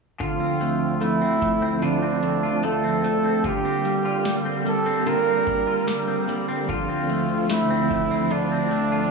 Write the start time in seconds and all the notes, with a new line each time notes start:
0.20 D2 D3 F3 C4 F4, kick, closed hi-hat
0.40 C4
0.61 A3, closed hi-hat
1.01 A3 E4, closed hi-hat
1.22 C4
1.42 A3, kick, closed hi-hat
1.62 C4
1.82 D3 D4 F4, closed hi-hat
2.02 C4
2.23 A3, closed hi-hat
2.43 F4
2.63 A3 A4, closed hi-hat
2.84 C4
3.04 A3, closed hi-hat
3.24 C4
3.44 D3 G3 A#3 F4 G4, kick, closed hi-hat
3.65 C4
3.85 G3, closed hi-hat
4.05 F4
4.25 G3, snare, closed hi-hat
4.45 C4
4.66 G3 A4, closed hi-hat
4.86 C4
5.06 D3 F4 A#4, closed hi-hat
5.26 C4
5.47 G3, kick, closed hi-hat
5.67 F4
5.87 G3, snare, closed hi-hat
6.08 C4
6.28 G3, closed hi-hat
6.48 C4
6.69 D2 D3 F3 C4 F4, kick, closed hi-hat
6.89 C4
7.09 A3, closed hi-hat
7.50 A3 E4, snare, closed hi-hat
7.70 C4
7.91 A3, kick, closed hi-hat
8.11 C4
8.31 D3 D4 F4, closed hi-hat
8.52 C4
8.71 A3, closed hi-hat
8.92 F4